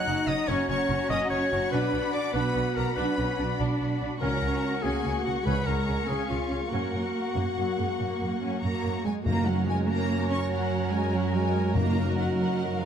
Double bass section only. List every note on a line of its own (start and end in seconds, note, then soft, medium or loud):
0.07 0.15 F#1 soft
0.28 0.36 F#1 soft
0.48 0.56 F#1 medium
0.69 0.77 F#1 soft
0.89 0.97 F#1 soft
1.11 1.19 F#1 medium
1.31 1.39 F#1 soft
1.52 1.60 F#1 soft
1.73 1.81 B1 medium
1.93 2.01 B1 soft
2.34 2.42 B1 medium
2.56 2.64 B1 soft
2.77 2.85 B1 soft
2.97 3.05 B1 medium
3.18 3.26 B1 soft
3.39 3.47 B1 soft
3.59 3.67 B1 medium
3.80 3.88 B1 soft
4.01 4.09 B1 soft
4.22 4.30 C#2 medium
4.43 4.51 C#2 soft
4.84 4.92 C#2 medium
5.05 5.13 C#2 soft
5.26 5.34 C#2 soft
5.46 5.54 C#2 medium
5.67 5.75 C#2 soft
5.88 5.96 C#2 soft
6.09 6.17 C#2 medium
6.30 6.38 C#2 soft
6.51 6.59 C#2 soft
6.72 6.80 F#2 soft
6.93 7.01 F#2 soft
7.35 7.43 F#2 medium
7.57 7.65 F#2 soft
7.78 7.86 F#2 soft
7.99 8.07 F#2 medium
8.20 8.28 F#2 soft
8.42 8.50 F#2 soft
8.62 8.70 F#2 soft
8.84 8.92 F#2 soft
9.04 9.12 F#2 soft
9.26 12.85 F#2 medium